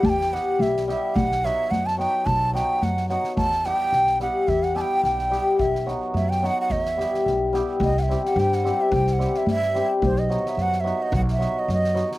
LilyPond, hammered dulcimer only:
\new Staff \with { instrumentName = "Hammered dulcimer" } { \time 2/4 \key e \minor \tempo 4 = 108 r8 <g b e' g'>8 r8 <g b e' g'>8 | r8 <fis b dis' fis'>8 r8 <fis b dis' fis'>8 | r8 <fis b dis' fis'>8 r8 <fis b dis' fis'>8 | r8 <g b e' g'>8 r8 <g b e' g'>8 |
r8 <g b e' g'>8 r8 <g b e' g'>8 | r8 <fis b dis' fis'>8 r8 <fis b dis' fis'>8 | r8 <g b e' g'>8 r8 <g b e' g'>8 | r8 <g c' e' g'>8 r8 <g c' e' g'>8 |
r8 <g c' e' g'>8 r8 <g c' e' g'>8 | r8 <fis b dis' fis'>8 r8 <fis b dis' fis'>8 | r8 <fis b dis' fis'>8 r8 <fis b dis' fis'>8 | }